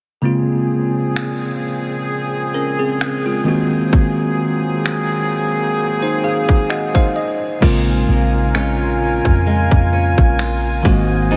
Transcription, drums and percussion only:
1.16 finger snap loud
3.01 finger snap loud
3.93 kick loud
4.86 finger snap loud
6.49 kick medium
6.70 finger snap loud
6.95 kick medium
7.62 kick loud
7.62 crash medium
8.55 finger snap loud
9.25 kick medium
9.71 kick medium
10.18 kick medium
10.39 finger snap loud
10.85 kick medium

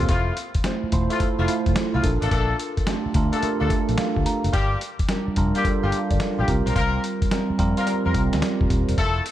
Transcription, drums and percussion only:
0.09 kick loud
0.09 closed hi-hat medium
0.37 closed hi-hat medium
0.55 kick medium
0.55 closed hi-hat soft
0.64 snare loud
0.64 closed hi-hat medium
0.92 kick medium
0.92 closed hi-hat medium
1.10 closed hi-hat soft
1.20 kick medium
1.20 closed hi-hat medium
1.48 closed hi-hat medium
1.66 kick medium
1.66 closed hi-hat soft
1.76 snare loud
1.76 closed hi-hat medium
2.04 kick medium
2.04 closed hi-hat medium
2.22 closed hi-hat medium
2.31 kick loud
2.31 closed hi-hat medium
2.60 closed hi-hat medium
2.77 kick medium
2.77 closed hi-hat soft
2.87 snare loud
2.87 closed hi-hat medium
3.14 kick medium
3.14 closed hi-hat medium
3.33 closed hi-hat soft
3.43 closed hi-hat medium
3.70 kick loud
3.70 closed hi-hat medium
3.89 closed hi-hat soft
3.98 snare loud
3.98 closed hi-hat medium
4.17 kick medium
4.26 closed hi-hat medium
4.44 closed hi-hat medium
4.53 kick loud
4.53 closed hi-hat medium
4.81 closed hi-hat medium
4.99 kick medium
4.99 closed hi-hat soft
5.09 snare loud
5.09 closed hi-hat medium
5.36 kick medium
5.36 closed hi-hat medium
5.55 closed hi-hat soft
5.65 kick loud
5.65 closed hi-hat medium
5.92 closed hi-hat medium
6.11 kick medium
6.11 closed hi-hat soft
6.20 snare loud
6.20 closed hi-hat medium
6.48 kick loud
6.48 closed hi-hat medium
6.67 closed hi-hat medium
6.76 kick loud
6.76 closed hi-hat medium
7.04 closed hi-hat medium
7.22 kick medium
7.22 closed hi-hat soft
7.31 snare loud
7.31 closed hi-hat medium
7.59 kick medium
7.59 closed hi-hat medium
7.77 closed hi-hat soft
7.87 closed hi-hat medium
8.14 kick loud
8.14 closed hi-hat medium
8.33 snare medium
8.33 closed hi-hat soft
8.42 snare loud
8.42 closed hi-hat medium
8.61 kick medium
8.70 kick loud
8.70 closed hi-hat medium
8.89 closed hi-hat medium
8.98 kick loud
8.98 closed hi-hat medium
9.26 closed hi-hat medium

